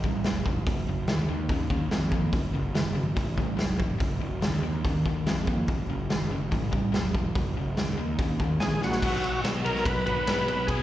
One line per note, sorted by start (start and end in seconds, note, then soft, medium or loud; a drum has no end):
0.04 0.23 A1 medium
0.04 0.23 A2 medium
0.04 0.24 G3 medium
0.04 kick medium
0.24 0.62 F1 medium
0.24 0.44 A2 medium
0.24 0.45 F#3 loud
0.24 snare medium
0.24 open hi-hat soft
0.46 0.65 A2 medium
0.46 0.66 E3 medium
0.46 kick medium
0.67 0.85 F#1 medium
0.67 0.86 F#2 medium
0.67 0.86 C#3 medium
0.67 kick loud
0.67 open hi-hat soft
0.87 1.06 F#1 medium
0.87 1.07 F#2 medium
0.87 1.07 C#3 medium
1.08 1.27 D2 medium
1.08 1.28 F#2 medium
1.08 1.27 D#3 medium
1.08 snare loud
1.08 open hi-hat soft
1.29 1.48 D#2 medium
1.29 1.48 D#3 medium
1.29 1.48 A#3 medium
1.49 1.68 D#2 medium
1.49 1.69 D#3 medium
1.49 1.70 C#4 medium
1.49 kick medium
1.49 open hi-hat soft
1.70 1.89 D#2 medium
1.70 1.90 D#3 medium
1.70 1.90 C#4 medium
1.70 kick medium
1.91 2.28 F2 medium
1.91 2.11 D#3 medium
1.91 2.11 C4 medium
1.91 snare loud
1.91 open hi-hat soft
2.12 2.32 D#3 medium
2.12 2.32 A#3 medium
2.12 kick medium
2.33 2.52 F#1 medium
2.33 2.53 F#2 medium
2.33 2.53 C#3 medium
2.33 kick loud
2.33 open hi-hat soft
2.54 2.73 F#1 medium
2.54 2.73 F#2 medium
2.54 2.74 C#3 medium
2.75 2.94 F#1 medium
2.75 2.94 F#2 medium
2.75 2.94 D#3 medium
2.75 snare loud
2.75 open hi-hat soft
2.95 3.15 G#1 medium
2.95 3.15 F#2 medium
2.95 3.15 C#3 medium
3.16 3.35 A1 medium
3.16 3.36 A2 medium
3.16 3.36 E3 medium
3.16 kick medium
3.16 open hi-hat soft
3.37 3.56 A1 medium
3.37 3.56 A2 medium
3.37 3.57 G3 medium
3.37 kick medium
3.57 3.96 F1 medium
3.57 3.77 A2 medium
3.57 3.77 F#3 medium
3.57 snare medium
3.57 open hi-hat soft
3.79 3.98 A2 medium
3.79 3.99 E3 medium
3.79 kick medium
3.99 4.19 F#1 medium
3.99 4.19 F#2 medium
3.99 4.19 C#3 medium
3.99 kick loud
3.99 open hi-hat soft
4.21 4.41 F#1 medium
4.21 4.40 F#2 medium
4.21 4.41 C#3 medium
4.42 4.62 D2 medium
4.42 4.61 F#2 medium
4.42 4.61 D#3 medium
4.42 snare loud
4.42 open hi-hat soft
4.63 4.83 D#2 medium
4.63 4.82 D#3 medium
4.63 4.83 A#3 medium
4.85 5.03 D#2 medium
4.85 5.04 D#3 medium
4.85 5.04 C#4 medium
4.85 kick medium
4.85 open hi-hat soft
5.06 5.24 D#2 medium
5.06 5.25 D#3 medium
5.06 5.25 C#4 medium
5.06 kick medium
5.26 5.64 F2 medium
5.26 5.45 D#3 medium
5.26 5.46 C4 loud
5.26 snare loud
5.26 open hi-hat soft
5.47 5.66 D#3 medium
5.47 5.66 A#3 medium
5.47 kick medium
5.68 5.87 F#1 medium
5.68 5.88 F#2 medium
5.68 5.88 C#3 medium
5.68 kick loud
5.68 open hi-hat soft
5.90 6.08 F#1 medium
5.90 6.08 F#2 medium
5.90 6.08 C#3 medium
6.10 6.30 F#1 medium
6.10 6.29 F#2 medium
6.10 6.29 D#3 medium
6.10 snare loud
6.10 open hi-hat soft
6.31 6.51 F#1 medium
6.31 6.50 F#2 medium
6.31 6.50 C#3 medium
6.51 6.70 A1 medium
6.51 6.70 A2 medium
6.51 6.71 E3 medium
6.51 kick medium
6.51 open hi-hat medium
6.72 6.91 A1 medium
6.72 6.91 A2 medium
6.72 6.91 G3 medium
6.72 kick medium
6.92 7.31 E1 medium
6.92 7.12 A2 medium
6.92 7.12 F#3 medium
6.92 snare loud
6.92 open hi-hat soft
7.14 7.33 A2 medium
7.14 7.34 E3 medium
7.14 kick medium
7.35 7.54 F#1 medium
7.35 7.54 F#2 medium
7.35 7.54 C#3 medium
7.35 kick loud
7.35 open hi-hat soft
7.57 7.76 F#1 medium
7.57 7.76 F#2 medium
7.57 7.76 C#3 medium
7.77 7.96 C#2 medium
7.77 7.96 F#2 medium
7.77 7.96 D#3 medium
7.77 snare loud
7.77 open hi-hat soft
7.98 8.17 D#2 medium
7.98 8.17 D#3 medium
7.98 8.17 A#3 medium
8.19 8.37 D#2 medium
8.19 8.38 D#3 medium
8.19 8.39 C#4 medium
8.19 kick medium
8.19 open hi-hat medium
8.40 8.58 D#2 medium
8.40 8.59 D#3 medium
8.40 8.59 C#4 medium
8.40 kick medium
8.60 8.98 A#1 medium
8.60 8.80 D#3 medium
8.60 8.80 C4 medium
8.60 8.74 G#4 medium
8.60 snare medium
8.60 open hi-hat soft
8.75 8.82 G#4 medium
8.82 9.00 D#3 medium
8.82 9.01 A#3 medium
8.82 9.41 F#4 medium
8.82 snare medium
8.92 snare medium
9.02 9.20 B1 medium
9.02 9.22 B2 medium
9.02 9.22 F#3 medium
9.02 9.23 B3 loud
9.02 10.06 D#4 medium
9.02 10.05 F#4 loud
9.02 kick loud
9.02 crash loud
9.24 9.42 B1 medium
9.24 9.43 B2 medium
9.24 9.43 F#3 medium
9.24 ride medium
9.44 9.61 B2 medium
9.44 9.63 B2 medium
9.44 9.63 F#3 medium
9.44 snare loud
9.44 ride medium
9.64 9.83 B1 medium
9.64 9.84 B2 medium
9.64 9.84 F#3 medium
9.64 9.85 B3 medium
9.64 9.84 A#4 loud
9.64 ride medium
9.76 snare soft
9.85 10.03 B1 medium
9.85 10.04 B2 medium
9.85 10.05 F#3 medium
9.85 10.05 B4 medium
9.85 kick loud
9.85 ride medium
10.06 10.24 G#1 medium
10.06 10.25 B2 medium
10.06 10.25 F#3 medium
10.06 10.26 B3 medium
10.06 10.27 D#4 medium
10.06 10.28 F#4 medium
10.06 10.71 B4 loud
10.06 ride medium
10.26 10.45 B1 medium
10.26 10.46 B2 medium
10.26 10.46 F#3 medium
10.26 10.47 B3 loud
10.26 10.68 D#4 medium
10.26 10.71 F#4 medium
10.26 snare loud
10.26 ride medium
10.47 10.66 B1 medium
10.47 10.66 B2 medium
10.47 10.67 F#3 medium
10.47 ride medium
10.67 10.83 B1 medium
10.67 10.83 B2 medium
10.67 10.83 F#3 medium
10.67 10.83 B3 medium
10.67 10.83 D#4 medium
10.67 10.83 G#4 loud
10.67 kick loud
10.67 ride medium
10.71 10.83 F#4 medium